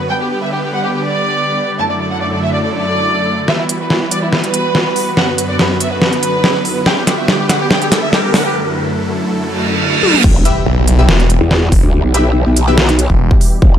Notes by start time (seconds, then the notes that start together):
Already playing: B3 B4
0.10 D3 G3 G4 G5
0.21 G4
0.31 G4
0.42 E5
0.52 G4
0.63 G4
0.73 F#5
0.84 G4
0.95 G4
1.06 D5
1.79 F#2 D3 F#3 A3 E4 A4 A5
1.90 D5
2.00 D5
2.11 F#5
2.21 D5
2.32 D5
2.42 E5
2.54 D5
2.64 D5
2.75 D5
3.48 E3 G3 B3 F#4 B4 E5, snare, riser
3.59 E4
3.69 E4, closed hi-hat
3.80 B4
3.90 E4, snare
4.01 E4
4.11 D5, closed hi-hat
4.23 E4
4.33 E4, snare
4.44 B4, closed hi-hat
4.54 closed hi-hat
4.75 snare
4.96 open hi-hat
5.17 F#2 D3 F#3 F#5, snare
5.28 B4
5.38 B4, closed hi-hat
5.49 D5
5.59 B4, snare
5.70 B4
5.80 E5, closed hi-hat
5.92 B4
6.02 B4, snare
6.13 B4, closed hi-hat
6.23 closed hi-hat
6.44 snare
6.65 open hi-hat
6.86 G3 G4 G5, snare
6.97 G4
7.07 G4, snare, closed hi-hat
7.18 E5
7.28 G4, snare
7.39 G4
7.49 F#5, snare, closed hi-hat
7.61 G4
7.71 G5, snare
7.82 G4, closed hi-hat
7.92 G4, snare, closed hi-hat
8.03 E5
8.13 G4, snare
8.24 G4
8.34 F#5, snare, open hi-hat
8.45 G4
8.55 F#2 F#3 A3 E4 A4
9.40 reverse cymbal
10.03 high tom
10.14 mid tom
10.24 E1 B2 E3 G3 E4 G4, kick, crash, impact
10.45 G4 B4 E5, closed hi-hat
10.66 B1
10.88 closed hi-hat
10.99 G4 B4 E5
11.09 E1, snare
11.20 closed hi-hat
11.30 closed hi-hat
11.41 E2
11.51 snare
11.72 E1, kick, open hi-hat
11.83 D2
12.04 B1
12.14 G4 B4 E5, closed hi-hat
12.46 B1
12.57 closed hi-hat
12.68 G4 B4 E5
12.78 snare
12.89 closed hi-hat
12.99 closed hi-hat
13.10 E1, kick
13.31 kick
13.41 open hi-hat
13.62 E1, kick